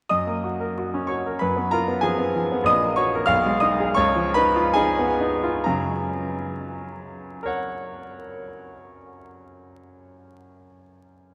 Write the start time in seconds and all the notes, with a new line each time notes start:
0.09 F#2 D#5 D#6
0.27 A#3
0.44 F#4
0.60 A#4
0.78 F#4
0.94 C#4
1.07 F#4 C#5 C#6
1.26 A#4
1.39 F#2 B4 B5
1.57 B3
1.71 F4 A#4 A#5
1.88 B3
2.01 F3 G#4 G#5
2.19 B3
2.36 F3
2.52 B3
2.64 A#1 D#5 D#6
2.84 A#3
2.96 F#4 C#5 C#6
3.15 A#4
3.26 B1 F5 F6
3.46 G#3
3.60 D#4 D#5 D#6
3.80 G#4
3.94 C#2 C#5 C#6
4.16 F3
4.34 D#4 B4 B5
4.56 F4
4.74 D#4 G#4 G#5
4.99 B3
5.21 D#4
5.44 F4
5.64 F#2 C#3 A#5
7.43 A#4 C#5
7.47 F#5